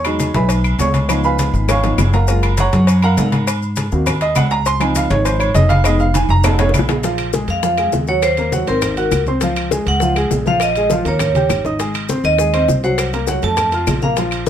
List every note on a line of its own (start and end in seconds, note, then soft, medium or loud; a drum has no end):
0.00 0.29 E2 loud
0.00 0.33 C#5 medium
0.00 0.32 C#6 medium
0.05 0.48 F#3 medium
0.05 0.48 G#3 medium
0.05 0.48 D#4 medium
0.05 cowbell medium
0.05 high conga soft
0.05 low agogo loud
0.05 claves medium
0.05 maracas soft
0.19 cowbell medium
0.19 high conga loud
0.19 low agogo medium
0.19 maracas medium
0.34 0.76 B1 loud
0.34 0.77 B4 medium
0.34 0.77 E5 medium
0.34 0.77 G#5 medium
0.34 0.77 B5 medium
0.34 cowbell medium
0.34 high conga loud
0.34 maracas soft
0.49 cowbell loud
0.49 high conga soft
0.49 low agogo medium
0.49 maracas medium
0.64 high conga soft
0.64 low agogo medium
0.64 claves medium
0.64 maracas soft
0.79 1.48 C#2 medium
0.79 1.22 C#5 medium
0.79 1.22 C#6 loud
0.79 cowbell medium
0.79 high conga medium
0.79 low timbale medium
0.79 maracas medium
0.94 cowbell medium
0.94 high conga medium
0.94 low agogo medium
0.94 maracas soft
1.09 1.82 F3 medium
1.09 1.83 B3 medium
1.09 1.83 D#4 medium
1.09 cowbell loud
1.09 high conga soft
1.09 low agogo loud
1.09 claves medium
1.09 maracas medium
1.24 1.66 B4 medium
1.24 1.66 F5 medium
1.24 1.66 G#5 medium
1.24 1.66 B5 loud
1.24 high conga soft
1.24 maracas soft
1.39 cowbell medium
1.39 high conga loud
1.39 low agogo medium
1.39 maracas medium
1.53 1.95 G#1 loud
1.53 high conga soft
1.53 maracas soft
1.68 2.11 C#5 medium
1.68 2.11 F5 medium
1.68 2.11 G#5 medium
1.68 2.11 C#6 loud
1.68 cowbell loud
1.68 high bongo medium
1.68 high conga soft
1.68 low conga medium
1.68 low agogo loud
1.68 claves medium
1.68 maracas medium
1.83 1.97 F3 medium
1.83 1.98 B3 soft
1.83 1.98 D#4 medium
1.83 cowbell medium
1.83 high bongo loud
1.83 high conga soft
1.83 low agogo medium
1.83 maracas soft
1.98 2.67 F#1 medium
1.98 cowbell medium
1.98 low bongo medium
1.98 high conga medium
1.98 low timbale medium
1.98 low agogo loud
1.98 claves medium
1.98 maracas medium
2.13 2.55 A#4 medium
2.13 2.55 F5 medium
2.13 2.56 F#5 medium
2.13 2.55 A#5 medium
2.13 cowbell medium
2.13 low bongo medium
2.13 maracas soft
2.28 2.48 G#3 medium
2.28 2.49 A#3 medium
2.28 2.49 F4 medium
2.28 cowbell loud
2.28 high conga soft
2.28 maracas medium
2.43 cowbell medium
2.43 high conga soft
2.43 low agogo loud
2.43 claves medium
2.43 maracas soft
2.57 3.01 C#5 medium
2.57 3.01 F#5 medium
2.57 3.01 A#5 medium
2.57 3.00 C#6 loud
2.57 cowbell medium
2.57 high conga medium
2.57 low agogo medium
2.57 maracas medium
2.73 3.15 F#2 loud
2.73 cowbell medium
2.73 high conga loud
2.73 maracas soft
2.87 cowbell loud
2.87 high conga soft
2.87 low agogo medium
2.87 maracas medium
3.02 3.45 A#4 medium
3.02 3.45 F5 medium
3.02 3.45 F#5 medium
3.02 3.45 A#5 loud
3.02 high conga soft
3.02 low agogo loud
3.02 claves medium
3.02 maracas soft
3.17 3.86 G#2 medium
3.17 cowbell medium
3.17 high conga medium
3.17 low timbale medium
3.17 maracas medium
3.32 cowbell medium
3.32 high conga medium
3.32 low agogo medium
3.32 maracas soft
3.47 cowbell loud
3.47 high conga soft
3.47 low agogo loud
3.47 claves medium
3.47 maracas medium
3.62 high conga soft
3.62 maracas soft
3.76 cowbell medium
3.76 high conga loud
3.76 low agogo medium
3.76 maracas medium
3.91 4.34 D#2 loud
3.91 4.12 A#3 medium
3.91 4.12 C4 soft
3.91 4.13 F#4 medium
3.91 high conga soft
3.91 maracas soft
4.06 cowbell loud
4.06 high conga soft
4.06 low conga medium
4.06 low agogo loud
4.06 claves medium
4.06 maracas medium
4.21 4.36 D#5 loud
4.21 cowbell medium
4.21 high conga soft
4.21 low agogo medium
4.21 maracas soft
4.35 5.05 C#2 loud
4.35 4.51 F#5 medium
4.35 cowbell medium
4.35 high conga medium
4.35 low timbale medium
4.35 low agogo loud
4.35 claves medium
4.35 maracas medium
4.50 4.66 A#5 loud
4.50 cowbell medium
4.50 maracas soft
4.66 4.81 C6 loud
4.66 cowbell loud
4.66 high conga soft
4.66 maracas medium
4.80 5.80 F3 medium
4.80 5.81 C4 medium
4.80 5.81 D#4 medium
4.80 4.95 G#5 loud
4.80 cowbell medium
4.80 high conga soft
4.80 low agogo loud
4.80 claves medium
4.80 maracas soft
4.95 5.11 F5 loud
4.95 cowbell medium
4.95 high conga loud
4.95 low agogo medium
4.95 maracas medium
5.10 5.52 G#1 loud
5.10 5.25 C#5 loud
5.10 cowbell medium
5.10 high conga loud
5.10 maracas soft
5.25 5.40 C5 medium
5.25 cowbell loud
5.25 high conga soft
5.25 low agogo medium
5.25 maracas medium
5.40 5.54 C#5 medium
5.40 high conga soft
5.40 low agogo loud
5.40 claves medium
5.40 maracas soft
5.54 6.24 F1 loud
5.54 5.69 D#5 loud
5.54 cowbell medium
5.54 high conga loud
5.54 low timbale medium
5.54 maracas medium
5.69 5.84 F5 loud
5.69 cowbell medium
5.69 high conga loud
5.69 low agogo medium
5.69 maracas soft
5.84 6.05 G#3 medium
5.84 6.05 B3 medium
5.84 6.05 D#4 medium
5.84 6.00 D#5 loud
5.84 cowbell loud
5.84 low agogo loud
5.84 claves medium
5.84 maracas medium
5.99 6.14 F5 loud
5.99 high conga soft
5.99 maracas soft
6.14 6.30 G#5 loud
6.14 cowbell medium
6.14 high conga loud
6.14 high timbale medium
6.14 low agogo medium
6.14 maracas medium
6.29 6.71 F1 loud
6.29 6.44 A#5 loud
6.29 high conga soft
6.29 maracas soft
6.44 6.64 A3 medium
6.44 6.64 C#4 medium
6.44 6.65 D#4 medium
6.44 6.59 A5 medium
6.44 cowbell loud
6.44 high conga soft
6.44 low conga medium
6.44 low timbale loud
6.44 low agogo loud
6.44 claves medium
6.44 maracas medium
6.59 6.68 C#5 loud
6.59 cowbell medium
6.59 high bongo loud
6.59 high conga soft
6.59 low conga medium
6.59 low timbale medium
6.59 low agogo medium
6.59 maracas soft
6.69 high bongo medium
6.74 7.43 A#1 loud
6.74 cowbell medium
6.74 high conga medium
6.74 low timbale medium
6.74 low agogo loud
6.74 claves medium
6.74 maracas medium
6.79 low bongo loud
6.89 cowbell medium
6.89 low bongo loud
6.89 high conga medium
6.89 low timbale medium
6.89 maracas soft
7.03 7.28 F3 medium
7.03 7.29 F4 medium
7.03 7.29 F5 medium
7.03 high bongo medium
7.03 high timbale medium
7.03 maracas medium
7.18 high conga soft
7.18 high timbale medium
7.18 claves medium
7.18 maracas soft
7.33 7.58 G#3 medium
7.33 7.58 G#4 medium
7.33 7.58 G#5 medium
7.33 high bongo medium
7.33 high conga medium
7.33 maracas medium
7.48 7.89 F2 loud
7.48 7.91 F5 loud
7.48 high bongo soft
7.48 high timbale medium
7.48 maracas soft
7.63 7.75 F3 medium
7.63 7.76 F4 medium
7.63 7.76 F5 medium
7.63 high bongo medium
7.63 high conga soft
7.63 maracas medium
7.78 8.03 G#3 medium
7.78 8.03 G#4 medium
7.78 8.03 G#5 medium
7.78 high bongo soft
7.78 high conga soft
7.78 high timbale medium
7.78 claves medium
7.78 maracas soft
7.92 8.62 D#2 medium
7.92 high bongo soft
7.92 low bongo medium
7.92 high conga medium
7.92 low timbale medium
7.92 maracas medium
8.07 8.33 F#3 medium
8.07 8.33 F#4 medium
8.07 8.24 C#5 medium
8.07 8.33 F#5 medium
8.07 high bongo soft
8.07 maracas soft
8.22 8.51 C5 medium
8.22 high bongo medium
8.22 high conga soft
8.22 high timbale medium
8.22 claves medium
8.22 maracas medium
8.37 8.50 A#3 medium
8.37 8.50 A#4 medium
8.37 8.50 A#5 medium
8.37 high conga soft
8.37 high timbale medium
8.37 maracas soft
8.52 8.65 F#3 medium
8.52 8.65 F#4 medium
8.52 8.65 F#5 medium
8.52 high bongo medium
8.52 high conga loud
8.52 maracas medium
8.67 9.09 G#1 loud
8.67 8.92 C4 medium
8.67 9.23 A#4 medium
8.67 8.92 C5 medium
8.67 8.92 C6 medium
8.67 high bongo soft
8.67 high conga soft
8.67 high timbale medium
8.67 maracas soft
8.82 high bongo medium
8.82 high conga soft
8.82 low conga medium
8.82 high timbale loud
8.82 claves medium
8.82 maracas medium
8.96 9.22 F#4 medium
8.96 9.22 F#5 medium
8.96 9.22 F#6 medium
8.96 high bongo soft
8.96 high conga soft
8.96 high timbale medium
8.96 maracas soft
9.11 9.81 C#2 medium
9.11 high bongo soft
9.11 low bongo medium
9.11 high conga medium
9.11 high timbale medium
9.11 claves medium
9.11 maracas medium
9.26 9.40 C4 medium
9.26 9.40 C5 medium
9.26 9.40 C6 medium
9.26 high bongo soft
9.26 high conga medium
9.26 maracas soft
9.41 9.67 F3 medium
9.41 9.67 F4 medium
9.41 9.67 F5 medium
9.41 high bongo medium
9.41 high conga soft
9.41 high timbale medium
9.41 maracas medium
9.56 high conga soft
9.56 high timbale medium
9.56 claves medium
9.56 maracas soft
9.71 9.96 G#3 medium
9.71 9.97 G#4 medium
9.71 9.97 G#5 medium
9.71 high bongo medium
9.71 high conga medium
9.71 maracas medium
9.86 10.28 C#2 loud
9.86 10.29 F#5 loud
9.86 high bongo soft
9.86 high timbale medium
9.86 maracas soft
10.00 10.14 F3 medium
10.00 10.14 F4 medium
10.00 10.14 F5 medium
10.00 high bongo medium
10.00 high conga soft
10.00 maracas medium
10.16 10.41 G#3 medium
10.16 10.41 G#4 medium
10.16 10.41 G#5 medium
10.16 high bongo soft
10.16 high conga soft
10.16 high timbale medium
10.16 claves medium
10.16 maracas soft
10.31 11.00 A#1 medium
10.31 high bongo soft
10.31 low bongo medium
10.31 high conga medium
10.31 low timbale medium
10.31 maracas medium
10.46 10.71 F3 medium
10.46 10.71 F4 medium
10.46 10.71 F5 medium
10.46 10.61 F5 medium
10.46 high bongo soft
10.46 high conga medium
10.46 maracas soft
10.60 10.89 D#5 medium
10.60 high bongo medium
10.60 high conga soft
10.60 high timbale medium
10.60 claves medium
10.60 maracas medium
10.75 10.89 G#3 medium
10.75 10.89 G#4 medium
10.75 10.89 G#5 medium
10.75 high conga soft
10.75 high timbale medium
10.75 maracas soft
10.90 11.03 F3 medium
10.90 11.03 F4 medium
10.90 11.04 F5 medium
10.90 high bongo medium
10.90 high conga loud
10.90 maracas medium
11.05 11.47 D#2 loud
11.05 11.30 A#3 medium
11.05 11.30 A#4 medium
11.05 11.62 C#5 medium
11.05 11.30 A#5 medium
11.05 high bongo soft
11.05 high conga soft
11.05 high timbale medium
11.05 maracas soft
11.19 high bongo medium
11.19 high conga soft
11.19 low conga medium
11.19 high timbale medium
11.19 claves medium
11.19 maracas medium
11.35 11.60 G4 medium
11.35 11.60 G5 medium
11.35 11.60 G6 medium
11.35 high bongo soft
11.35 high conga medium
11.35 high timbale medium
11.35 maracas soft
11.49 12.19 G#1 medium
11.49 high bongo soft
11.49 low bongo medium
11.49 low conga medium
11.49 high timbale medium
11.49 claves medium
11.49 maracas medium
11.65 11.77 D#4 medium
11.65 11.78 D#5 medium
11.65 11.78 D#6 medium
11.65 high bongo soft
11.65 low conga medium
11.65 maracas soft
11.79 12.04 G#3 medium
11.79 12.04 G#4 medium
11.79 12.04 G#5 medium
11.79 high bongo medium
11.79 high conga soft
11.79 high timbale medium
11.79 maracas medium
11.94 high conga soft
11.94 high timbale medium
11.94 claves medium
11.94 maracas soft
12.09 12.34 C4 medium
12.09 12.34 C5 medium
12.09 12.34 C6 medium
12.09 high bongo medium
12.09 high conga medium
12.09 maracas medium
12.24 12.65 D#2 medium
12.24 12.66 D#5 loud
12.24 high bongo soft
12.24 high timbale medium
12.24 maracas soft
12.38 12.51 G#3 medium
12.38 12.51 G#4 medium
12.38 12.51 G#5 medium
12.38 high bongo medium
12.38 high conga soft
12.38 maracas medium
12.54 12.78 C4 medium
12.54 12.78 C5 medium
12.54 12.79 C6 medium
12.54 high bongo soft
12.54 high conga soft
12.54 high timbale medium
12.54 claves medium
12.54 maracas soft
12.68 13.37 C2 medium
12.68 high bongo soft
12.68 low bongo medium
12.68 high conga medium
12.68 maracas medium
12.83 13.08 F#3 medium
12.83 13.08 F#4 medium
12.83 12.98 C5 medium
12.83 13.09 F#5 medium
12.83 high bongo soft
12.83 maracas soft
12.98 high bongo medium
12.98 high conga soft
12.98 high timbale medium
12.98 claves medium
12.98 maracas medium
13.13 13.25 A#3 medium
13.13 13.26 A#4 medium
13.13 13.26 A#5 medium
13.13 high conga soft
13.13 high timbale medium
13.13 maracas soft
13.27 13.41 F#3 medium
13.27 13.41 F#4 medium
13.27 13.41 F#5 medium
13.27 high bongo medium
13.27 high conga medium
13.27 maracas medium
13.42 13.84 F2 loud
13.42 13.67 A3 medium
13.42 13.68 A4 medium
13.42 13.68 A5 medium
13.42 13.85 A5 loud
13.42 high bongo soft
13.42 high conga soft
13.42 high timbale medium
13.42 maracas soft
13.57 high bongo medium
13.57 high conga soft
13.57 low conga medium
13.57 high timbale medium
13.57 claves medium
13.57 maracas medium
13.72 13.98 F4 medium
13.72 13.98 F5 medium
13.72 13.98 F6 medium
13.72 high bongo soft
13.72 high conga soft
13.72 high timbale medium
13.72 maracas soft
13.87 14.49 A#1 medium
13.87 high bongo soft
13.87 low bongo medium
13.87 high conga medium
13.87 high timbale medium
13.87 low timbale medium
13.87 claves medium
13.87 maracas medium
14.02 14.15 A#3 medium
14.02 14.15 A#4 medium
14.02 14.16 F5 medium
14.02 14.15 A#5 medium
14.02 high bongo soft
14.02 high conga medium
14.02 maracas soft
14.17 14.42 F3 medium
14.17 14.42 F4 medium
14.17 14.42 F5 medium
14.17 high bongo medium
14.17 high conga soft
14.17 high timbale medium
14.17 maracas medium
14.31 high conga soft
14.31 high timbale medium
14.31 claves medium
14.31 maracas soft
14.46 high conga medium